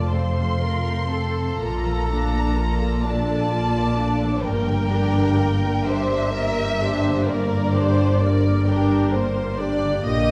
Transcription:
Already playing: F1 F2 F3 A3 F4 C5 F5 A5 C6
0.10 C4 A4 C5 C6
0.36 F5
0.60 A3 F4 A4 A#4
0.87 C5
1.11 C4 F4 A4
1.37 A3
1.61 A#1 A#2 A#3 F4 A#5
1.85 F3
2.09 A3 D4 A4
2.33 F4
2.56 A#3 F4 D5
2.81 A4
3.03 D4 A4 D5 A5
3.28 A4
3.51 A#3 F4 D5
3.75 F4
3.96 A3 D4 A4
4.23 F3
4.43 G1 G2 A#3 A#4 G5
4.68 D3
4.90 A#3 D4 G4
5.15 G4
5.36 A#3 A#4 D5
5.64 A#4
5.85 D4 G4 C5 D5 E5
6.12 A#4
6.34 A#3 A#4 D5
6.58 G4
6.81 A#3 D4 G4 C5
7.06 D3
7.26 G2 A#3 A#4 D5
7.53 A#3
7.73 D3 D4 G4 C5
7.98 G4
8.20 A#3 A#4 D5
8.45 A#4
8.66 D4 G4 A#4 D5 G5
8.92 A#4
9.13 A#3 A#4 C5 D5
9.38 G4
9.58 A#3 D4 G4 D5
9.84 D3
10.06 A#1 A#2 A#3 G4 D#5 D#6

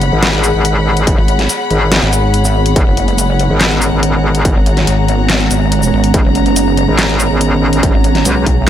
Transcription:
Already playing: F#1 D#3 G#3 B3 G#4 C#5 F#5 B5
0.01 closed hi-hat
0.12 G#1
0.23 snare, closed hi-hat
0.33 closed hi-hat
0.44 closed hi-hat, shaker
0.55 G#1
0.65 closed hi-hat
0.97 closed hi-hat
1.07 kick, closed hi-hat
1.18 G#1
1.28 closed hi-hat
1.39 snare, closed hi-hat
1.49 closed hi-hat, shaker
1.70 G#1, closed hi-hat
1.92 snare, closed hi-hat
2.02 G#1, closed hi-hat
2.13 closed hi-hat, shaker
2.34 closed hi-hat
2.45 shaker
2.66 closed hi-hat
2.76 G#1 C#4, kick, closed hi-hat
2.87 F#1
2.97 closed hi-hat
3.08 closed hi-hat
3.18 closed hi-hat, shaker
3.39 closed hi-hat
3.50 G#1
3.61 snare, clap, closed hi-hat
3.71 A#5, closed hi-hat
3.82 closed hi-hat, shaker
3.92 G#1
4.03 closed hi-hat
4.35 closed hi-hat
4.45 kick, closed hi-hat
4.56 G#1
4.66 closed hi-hat
4.77 snare, closed hi-hat
4.87 G#1, closed hi-hat
5.08 closed hi-hat
5.30 snare, clap, closed hi-hat
5.40 closed hi-hat
5.51 G#1, closed hi-hat, shaker
5.72 closed hi-hat
5.83 shaker
5.93 G#1
6.04 closed hi-hat
6.14 G#1, kick, closed hi-hat
6.25 F#1
6.35 closed hi-hat
6.46 closed hi-hat
6.56 closed hi-hat, shaker
6.77 closed hi-hat
6.88 G#1
6.99 snare, clap, closed hi-hat
7.09 closed hi-hat
7.20 closed hi-hat, shaker
7.31 G#1
7.41 closed hi-hat
7.73 closed hi-hat
7.83 kick, closed hi-hat
7.94 G#1
8.04 closed hi-hat
8.15 snare, closed hi-hat
8.25 B1, closed hi-hat, shaker
8.46 B1, kick, closed hi-hat

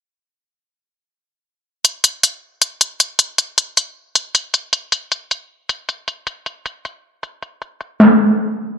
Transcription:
1.85 closed hi-hat
2.04 closed hi-hat
2.23 closed hi-hat
2.62 closed hi-hat
2.81 closed hi-hat
3.00 closed hi-hat
3.19 closed hi-hat
3.38 closed hi-hat
3.58 closed hi-hat
3.77 closed hi-hat
4.15 closed hi-hat
4.35 closed hi-hat
4.54 closed hi-hat
4.73 closed hi-hat
4.92 closed hi-hat
5.12 closed hi-hat
5.31 closed hi-hat
5.69 closed hi-hat
5.89 closed hi-hat
6.08 closed hi-hat
6.27 closed hi-hat
6.46 closed hi-hat
6.66 closed hi-hat
6.85 closed hi-hat
7.23 closed hi-hat
7.42 closed hi-hat
7.62 closed hi-hat
7.81 closed hi-hat
8.00 snare, open hi-hat

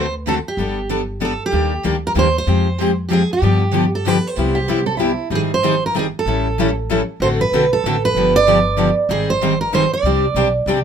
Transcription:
Already playing: D2 C5
0.27 D3 A3 C4 F#4 A4
0.48 G4
0.57 G1 G3 B3 D4 A4
0.90 G3 B3 D4 A4
1.21 G3 B3 D4 A4
1.25 A4
1.46 G4
1.52 D#2 D#3 G3 A#3 D4 G4
1.84 D2 D#3 G3 A#3 D4 G4
2.07 A#4
2.15 D#2 D#3 G3 A#3 D4 G4 C5
2.38 C5
2.47 F2 F3 G#3 C4 G4
2.80 F3 G#3 C4 G4
3.09 F3 G#3 C4 G4
3.13 G#4
3.33 G4
3.42 G2 D3 F3 B3 D4 G4
3.73 D3 F3 B3 D4 G4
3.95 A4
4.06 D3 F3 B3 D4 G4 B4
4.27 C5
4.37 C2 C3 G3 B3 E4 G4
4.55 G4
4.68 C3 G3 B3 E4 G4
4.86 A4
4.97 C3 G3 B3 E4 G4
5.30 G#1 D#3 G3 C4 D#4 G#4
5.35 G#4
5.54 C5
5.63 D#3 G3 C4 D#4 G#4
5.86 A#4
5.95 D#3 G3 C4 D#4 G#4
5.99 G#4
6.19 A4
6.26 A1 E3 G3 C#4 E4 A4
6.58 E3 G3 C#4 E4 A4
6.90 E3 G3 C#4 E4 A4
7.20 A1 D3 A3 C4 F#4 A4 C5
7.41 B4
7.52 B1 D3 A3 C4 F#4 A4
7.73 A4
7.84 A1 D3 A3 C4 F#4 A4
8.05 B4
8.15 G1 D3 F3 B3 D4 G4
8.36 D5
8.48 D3 F3 B3 D4 G4
8.77 D3 F3 B3 D4 G4
9.09 G#1 D#3 G3 C4 D#4 G#4
9.30 C5
9.42 D#3 G3 C4 D#4 G#4
9.61 A#4
9.73 D#3 G3 C4 D#4 G#4 C5
9.93 D5
10.03 C2 C3 G3 C4 D4 G4
10.34 B1 C3 G3 C4 D4 G4
10.66 C2 C3 G3 C4 D4 G4

